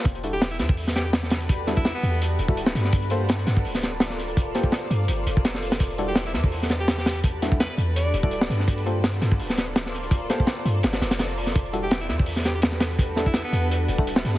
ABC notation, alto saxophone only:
X:1
M:4/4
L:1/16
Q:"Swing 16ths" 1/4=167
K:Em
V:1 name="Alto saxophone"
z3 G2 E E z3 G G z4 | z3 E2 B,3 z8 | z16 | z16 |
z3 G2 E E z4 G2 G2 z | z4 B B z2 d2 z d4 z | z16 | z16 |
z3 G2 E E z3 G G z4 | z3 E2 B,3 z8 |]